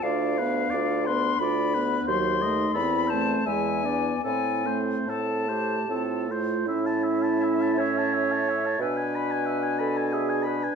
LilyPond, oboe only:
\new Staff \with { instrumentName = "Oboe" } { \time 3/4 \key a \minor \tempo 4 = 86 d''8 b'8 d''8 b'8 d''8 b'8 | bis'8 dis''8 a'8 c''8 e''8 d''8 | a'8 c''8 a'8 c''8 a'8 c''8 | \key a \major e''16 a''16 e''16 a''16 e''16 a''16 e''16 a''16 e''16 a''16 e''16 a''16 |
e''16 gis''16 b''16 gis''16 e''16 gis''16 b''16 gis''16 e''16 gis''16 b''16 gis''16 | }